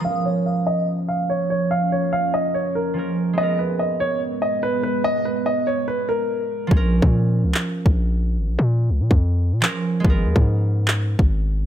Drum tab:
CP |----------------|----------------|----------------|----------------|
BD |----------------|----------------|----------------|----------------|

CP |--------x-------|------------x---|--------x-------|
BD |o--o-------o----|-------o--------|o--o-------o----|